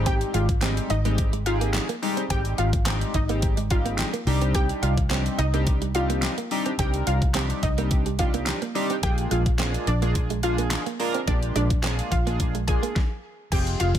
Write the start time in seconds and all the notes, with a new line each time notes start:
Already playing: G#1 G3 G#3 C4 D#4 G4
0.06 C4 G4 G5, kick, closed hi-hat
0.21 closed hi-hat
0.34 G#1 G#3 F4 F5, closed hi-hat
0.49 muted clean electric guitar stroke, kick, closed hi-hat
0.61 G3 G#3 C4 D#4 G4, snare, clap, closed hi-hat
0.77 closed hi-hat
0.90 G#1 D#4 D#5, muted clean electric guitar stroke, closed hi-hat
1.05 G3 G#3 A#3 C4 D#4 G4, closed hi-hat
1.18 kick, closed hi-hat
1.33 G#3, closed hi-hat
1.46 G#3 C4 D#4 F4 G4 G#4 F5, muted clean electric guitar stroke, closed hi-hat
1.61 A#3, closed hi-hat
1.74 snare, clap, closed hi-hat
1.89 A#3, closed hi-hat
2.02 G3 G#3 C4 D#4 G4, muted clean electric guitar stroke, open hi-hat
2.17 C4, closed hi-hat
2.30 G#1 G3 G#3 C4 D#4 G4 G5, kick, closed hi-hat
2.45 closed hi-hat
2.58 G#1 G#3 F4 F5, closed hi-hat
2.73 muted clean electric guitar stroke, kick, closed hi-hat
2.86 G3 G#3 C4 D#4 G4, snare, clap, closed hi-hat
3.01 closed hi-hat
3.14 G#1 D#4 D#5, muted clean electric guitar stroke, kick, closed hi-hat
3.29 G3 G#3 A#3 C4 D#4 G4, closed hi-hat
3.42 kick, closed hi-hat
3.57 G#3, closed hi-hat
3.70 G3 G#3 C4 D#4 F4 G4 F5, muted clean electric guitar stroke, kick, closed hi-hat
3.86 A#3, closed hi-hat
3.98 snare, clap, closed hi-hat
4.13 A#3, closed hi-hat
4.26 C2 G3 C4 D4 D#4 G4, muted clean electric guitar stroke, open hi-hat
4.41 C4, closed hi-hat
4.55 C4 G4 G5, kick, closed hi-hat
4.69 closed hi-hat
4.83 C2 G3 F4 F5, closed hi-hat
4.98 muted clean electric guitar stroke, kick, closed hi-hat
5.10 G3 C4 D4 D#4 G4, snare, clap, closed hi-hat
5.26 closed hi-hat
5.39 C2 D#4 D#5, muted clean electric guitar stroke, closed hi-hat
5.53 G3 A#3 C4 D4 D#4 G4, closed hi-hat
5.67 kick, closed hi-hat
5.82 G3, closed hi-hat
5.95 G3 C4 D4 D#4 F4 G4 F5, muted clean electric guitar stroke, closed hi-hat
6.10 A#3, closed hi-hat
6.22 snare, clap, closed hi-hat
6.38 A#3, closed hi-hat
6.51 G3 C4 D4 D#4 G4, muted clean electric guitar stroke, open hi-hat
6.66 C4, closed hi-hat
6.79 C2 G3 C4 D4 D#4 G4 A#4 G5, kick, closed hi-hat
6.94 closed hi-hat
7.07 C2 G3 F4 F5, closed hi-hat
7.22 muted clean electric guitar stroke, kick, closed hi-hat
7.34 G3 C4 D4 D#4 G4, snare, clap, closed hi-hat
7.50 closed hi-hat
7.63 C2 D#4 D#5, muted clean electric guitar stroke, kick, closed hi-hat
7.77 G3 A#3 C4 D4 D#4 G4, closed hi-hat
7.91 kick, closed hi-hat
8.06 G3, closed hi-hat
8.19 G3 C4 D4 D#4 F4 G4 F5, muted clean electric guitar stroke, kick, closed hi-hat
8.34 A#3, closed hi-hat
8.46 snare, clap, closed hi-hat
8.62 A#3, closed hi-hat
8.75 G3 C4 D4 D#4 G4, muted clean electric guitar stroke, open hi-hat
8.90 C4, closed hi-hat
9.03 A#1 G#3 A#3 D4 F4 G4 G#4 G5, kick, closed hi-hat
9.18 closed hi-hat
9.31 A#1 G#3 F4 F5, closed hi-hat
9.46 muted clean electric guitar stroke, kick, closed hi-hat
9.59 G#3 A#3 C4 D4 F4 G#4, snare, clap, closed hi-hat
9.74 closed hi-hat
9.87 A#1 D4 D5, muted clean electric guitar stroke, closed hi-hat
10.02 G#3 A#3 D4 F4 G#4, closed hi-hat
10.15 kick, closed hi-hat
10.30 G#3, closed hi-hat
10.43 G#3 A#3 D4 F4 G#4 F5, muted clean electric guitar stroke, closed hi-hat
10.58 A#3, closed hi-hat
10.71 snare, clap, closed hi-hat
10.86 A#3, closed hi-hat
10.99 G#3 A#3 D4 F4 A#4, muted clean electric guitar stroke, open hi-hat
11.14 C4, closed hi-hat
11.27 A#1 G#3 A#3 D4 F4 G4 D5, kick, closed hi-hat
11.43 closed hi-hat
11.56 A#1 G#3 D4 D5, closed hi-hat
11.70 muted clean electric guitar stroke, kick, closed hi-hat
11.83 G#3 A#3 C4 D4 F4 G#4, snare, clap, closed hi-hat
11.99 closed hi-hat
12.12 A#1 F4 F5, muted clean electric guitar stroke, kick, closed hi-hat
12.26 G#3 A#3 D4 F4 G#4, closed hi-hat
12.40 kick, closed hi-hat
12.55 G#3, closed hi-hat
12.68 G#3 A#3 D4 F4 G#4 G#5, muted clean electric guitar stroke, kick, closed hi-hat
12.83 A#3, closed hi-hat
12.96 kick, snare
13.52 F1 F3 G#3 C4 F4 G4 G#4 G5, kick, closed hi-hat, crash
13.67 closed hi-hat
13.80 F1 F4 F5, closed hi-hat
13.95 kick, closed hi-hat